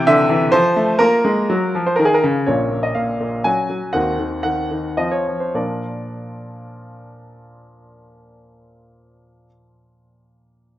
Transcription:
Already playing: C3 E3 G4 G5
0.07 D3 E5
0.29 E3
0.52 F3 C5
0.76 A3
0.98 A#3 F4 A#4
1.24 G#3
1.49 F#3
1.75 F3
1.86 C5
1.96 D#3 A#4
2.05 G#4
2.14 A#4
2.23 C#3
2.47 A#1 A#2 C#4 F4 C#5
2.71 A#2
2.83 D#5
2.95 A#2 F5
3.20 A#2
3.44 F#3 C#4 F#4 G#5
3.70 F#3
3.93 D#2 D#3 C4 F#4 F#5
4.19 D#3
4.43 D#3 F#5
4.71 D#3
4.97 F3 C4 F4 D#5
5.12 C#5
5.27 F3
5.40 C5
5.54 A#2 F3 D4 F4 A#4 D5

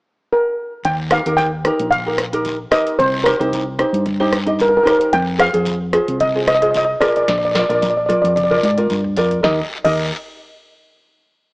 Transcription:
0.33 A#4
0.84 D#2 G5, kick, closed hi-hat, long guiro
1.11 D#4 G4 A#4 F5, cross-stick, closed hi-hat, short guiro
1.26 D#2 D#4 G4 A#4, closed hi-hat
1.37 G5, kick, closed hi-hat, short guiro
1.65 D#4 G4 A#4, cross-stick, closed hi-hat
1.79 A#1, closed hi-hat
1.91 F5, kick, closed hi-hat, long guiro
2.06 D#4 G4 A#4
2.18 cross-stick, closed hi-hat
2.33 D#4 G4 A#4, closed hi-hat
2.45 kick, closed hi-hat, short guiro
2.71 D#4 G4 A#4 D#5, cross-stick, closed hi-hat, short guiro
2.87 closed hi-hat
2.99 C2 C5, kick, closed hi-hat, long guiro
3.24 D#4 G4 A#4 C5, cross-stick, closed hi-hat, short guiro
3.39 C2 D#4 G4 C5, closed hi-hat
3.53 kick, closed hi-hat, short guiro
3.79 D#4 G4 C5, cross-stick, closed hi-hat
3.93 G2, closed hi-hat
4.06 kick, closed hi-hat, long guiro
4.20 D#4 G4 C5
4.33 cross-stick, closed hi-hat
4.46 D#4 G4 D#5, closed hi-hat
4.59 A#4, kick, closed hi-hat, short guiro
4.69 A#4
4.77 A#4
4.83 D#4 G4 A#4 C5, cross-stick, closed hi-hat, short guiro
4.90 A#4
4.99 A#4, closed hi-hat
5.13 F2 G5, kick, closed hi-hat, long guiro
5.38 F4 G#4 C5 F5, cross-stick, closed hi-hat, short guiro
5.53 F2 F4 G#4 C5, closed hi-hat
5.65 kick, closed hi-hat, short guiro
5.93 F4 G#4 C5, cross-stick, closed hi-hat
6.08 C2, closed hi-hat
6.20 D#5, kick, closed hi-hat, long guiro
6.35 F4 G#4 C5
6.48 D#5, cross-stick, closed hi-hat
6.55 D#5
6.62 F4 G#4 C5 D#5, closed hi-hat
6.71 D#5, closed hi-hat
6.75 D#5, kick, short guiro
6.85 D#5
7.00 F4 G#4 A#4 D5, cross-stick, closed hi-hat, short guiro
7.09 D5
7.16 D5, closed hi-hat
7.23 D5
7.28 A#1 D5, kick, snare, closed hi-hat, long guiro
7.39 D5
7.45 D5
7.52 F4 A#4 D5, snare, closed hi-hat, short guiro
7.59 D5
7.69 A#1 F4 A#4 D5, closed hi-hat
7.75 D5
7.82 D5, kick, closed hi-hat, high tom, short guiro
7.90 D5
7.97 D5
8.06 F4 A#4 D5, closed hi-hat, high tom
8.13 D5
8.22 F2 D5, closed hi-hat
8.29 D5
8.36 D5, kick, closed hi-hat, mid tom, long guiro
8.44 D5
8.50 F4 A#4 D5, mid tom
8.58 D5
8.63 G#2 D5, closed hi-hat, mid tom
8.78 F4 A#4 D5, closed hi-hat, mid tom
8.90 G2, kick, closed hi-hat, mid tom, short guiro
9.04 floor tom
9.17 F2 F4 A#4 D5, closed hi-hat, floor tom, short guiro
9.31 closed hi-hat, floor tom
9.43 D#2 D#4 G4 A#4 D#5, kick, snare, long guiro
9.85 D#2 D#4 G4 A#4 D#5, kick, crash, long guiro

